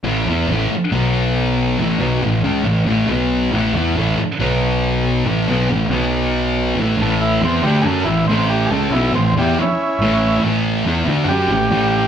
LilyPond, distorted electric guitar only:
\new Staff \with { instrumentName = "Distorted electric guitar" } { \clef bass \time 4/4 \key a \mixolydian \tempo 4 = 139 <a, e a>8 <e b e'>8 <a, e a>8 r8 <b, fis b>2 | <a, e a>8 <b, fis b>8 <a, e>8 <cis gis cis'>8 <a, e>8 <a, e a>8 <b, fis b>4 | <a, e a>8 <e b e'>8 <a, e a>8 r8 <b, fis b>2 | <a, e a>8 <b, fis b>8 <a, e>8 <b, fis b>2 <a, e a>8 |
<a, e a>4 <e b e'>8 <d a d'>8 <fis cis' fis'>8 <a, e>8 <a, e a>4 | <cis gis cis'>8 <b, fis b>8 <a, e>8 <e b e'>8 r4 <a, e a>4 | <a, e a>4 <e b e'>8 <d a d'>8 <fis cis' fis'>8 <a, e>8 <a, e a>4 | }